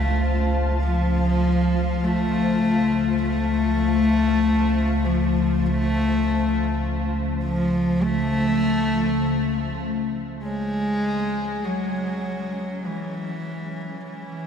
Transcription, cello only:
0.00 0.49 A3 medium
0.82 2.05 F3 loud
2.04 3.22 A3 loud
3.23 5.06 A3 loud
5.05 5.68 F3 medium
5.66 6.85 A3 loud
7.43 8.05 F3 medium
8.04 9.83 A3 loud
10.43 11.67 G#3 loud
11.65 12.87 F#3 medium
12.86 14.04 E3 medium
14.06 14.47 E3 medium

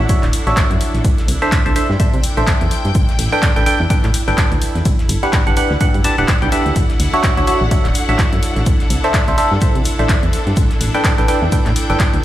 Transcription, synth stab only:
0.09 0.25 D4 medium
0.09 0.25 F#4 medium
0.09 0.25 C#5 medium
0.09 0.25 E5 medium
0.47 1.03 D4 medium
0.47 1.03 F#4 medium
0.47 1.03 C#5 medium
0.47 1.03 E5 medium
1.42 1.63 D4 medium
1.42 1.63 A4 medium
1.42 1.63 C5 medium
1.42 1.63 E5 loud
1.66 1.74 D4 medium
1.66 1.74 A4 medium
1.66 1.74 C5 medium
1.66 1.74 E5 loud
1.76 1.91 D4 medium
1.76 1.91 A4 medium
1.76 1.91 C5 medium
1.76 1.91 E5 loud
2.00 2.15 D4 medium
2.00 2.15 A4 medium
2.00 2.15 C5 medium
2.00 2.15 E5 medium
2.37 2.94 D4 medium
2.37 2.94 A4 medium
2.37 2.94 C5 medium
2.37 2.94 E5 medium
3.32 3.53 D4 medium
3.32 3.53 A4 medium
3.32 3.53 B4 medium
3.32 3.53 G5 loud
3.56 3.65 D4 medium
3.56 3.65 A4 medium
3.56 3.65 B4 medium
3.56 3.65 G5 loud
3.66 3.82 D4 medium
3.66 3.82 A4 medium
3.66 3.82 B4 medium
3.66 3.82 G5 loud
3.90 4.06 D4 medium
3.90 4.06 A4 medium
3.90 4.06 B4 medium
3.90 4.06 G5 medium
4.28 4.84 D4 medium
4.28 4.84 A4 medium
4.28 4.84 B4 medium
4.28 4.84 G5 medium
5.23 5.44 D4 medium
5.23 5.44 G4 medium
5.23 5.44 B4 medium
5.23 5.44 F#5 loud
5.47 5.55 D4 medium
5.47 5.55 G4 medium
5.47 5.55 B4 medium
5.47 5.55 F#5 loud
5.57 5.73 D4 medium
5.57 5.73 G4 medium
5.57 5.73 B4 medium
5.57 5.73 F#5 loud
5.81 5.96 D4 medium
5.81 5.96 G4 medium
5.81 5.96 B4 medium
5.81 5.96 F#5 medium
6.05 6.16 D4 medium
6.05 6.16 G4 medium
6.05 6.16 B4 medium
6.05 6.16 A5 medium
6.18 6.31 D4 medium
6.18 6.31 G4 medium
6.18 6.31 B4 medium
6.18 6.31 F#5 medium
6.42 6.50 D4 medium
6.42 6.50 G4 medium
6.42 6.50 B4 medium
6.42 6.50 G5 medium
6.52 6.75 D4 loud
6.52 6.75 G4 medium
6.52 6.75 B4 medium
6.52 6.75 E5 loud
7.14 7.34 D4 loud
7.14 7.34 F#4 medium
7.14 7.34 C#5 medium
7.14 7.34 E5 loud
7.37 7.46 D4 medium
7.37 7.46 F#4 medium
7.37 7.46 C#5 medium
7.37 7.46 E5 loud
7.47 7.63 D4 medium
7.47 7.63 F#4 medium
7.47 7.63 C#5 medium
7.47 7.63 E5 loud
7.71 7.87 D4 medium
7.71 7.87 F#4 medium
7.71 7.87 C#5 medium
7.71 7.87 E5 medium
8.09 8.65 D4 medium
8.09 8.65 F#4 medium
8.09 8.65 C#5 medium
8.09 8.65 E5 medium
9.04 9.25 D4 medium
9.04 9.25 A4 medium
9.04 9.25 C5 medium
9.04 9.25 E5 loud
9.28 9.36 D4 medium
9.28 9.36 A4 medium
9.28 9.36 C5 medium
9.28 9.36 E5 loud
9.38 9.53 D4 medium
9.38 9.53 A4 medium
9.38 9.53 C5 medium
9.38 9.53 E5 loud
9.62 9.77 D4 medium
9.62 9.77 A4 medium
9.62 9.77 C5 medium
9.62 9.77 E5 medium
9.99 10.56 D4 medium
9.99 10.56 A4 medium
9.99 10.56 C5 medium
9.99 10.56 E5 medium
10.94 11.15 D4 loud
10.94 11.15 A4 medium
10.94 11.15 B4 medium
10.94 11.15 G5 loud
11.18 11.27 D4 medium
11.18 11.27 A4 medium
11.18 11.27 B4 medium
11.18 11.27 G5 loud
11.28 11.44 D4 medium
11.28 11.44 A4 medium
11.28 11.44 B4 medium
11.28 11.44 G5 loud
11.52 11.68 D4 medium
11.52 11.68 A4 medium
11.52 11.68 B4 medium
11.52 11.68 G5 medium
11.90 12.25 D4 medium
11.90 12.25 A4 medium
11.90 12.25 B4 medium
11.90 12.25 G5 medium

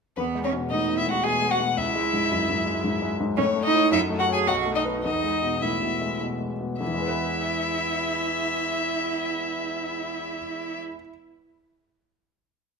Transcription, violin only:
0.16 0.24 B4 medium
0.44 0.52 C#5 medium
0.71 0.97 D#5 medium
0.98 1.10 E5 medium
1.10 1.25 F#5 medium
1.24 1.52 G#5 medium
1.51 1.79 F#5 medium
1.77 3.11 E5 medium
3.38 3.63 C#5 medium
3.65 3.91 D#5 medium
3.92 4.00 E5 medium
4.19 4.33 F#5 medium
4.33 4.39 G#5 medium
4.47 4.55 F#5 medium
4.75 4.83 D#5 medium
5.04 5.64 D#5 medium
5.62 6.21 E5 medium
6.80 10.80 E5 medium

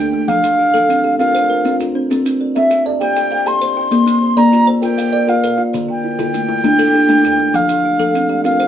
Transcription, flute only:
0.00 0.30 G5 loud
0.28 1.18 F5 loud
1.19 1.76 F5 medium
2.56 2.84 E5 medium
3.01 3.49 G5 loud
3.47 4.39 C6 loud
4.38 4.68 A#5 loud
4.82 5.31 G5 loud
5.29 5.63 F5 medium
5.91 7.57 G5 loud
7.55 8.44 F5 loud
8.45 8.68 F5 medium

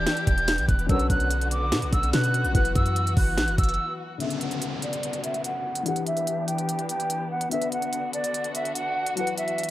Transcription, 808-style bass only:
0.27 0.60 E1 loud
0.58 0.68 B1 loud
0.69 0.88 E1 loud
0.89 1.09 B1 loud
1.10 1.74 B1 loud
1.72 1.84 B2 loud
1.82 1.92 B1 loud
1.93 2.13 B1 loud
2.13 2.46 B2 loud
2.44 2.54 A#1 medium
2.55 2.75 F#1 loud
2.75 3.15 F#2 loud
3.17 3.39 F#1 loud
3.38 3.49 A#1 medium
3.48 3.58 F#1 loud
3.58 3.78 F#1 loud

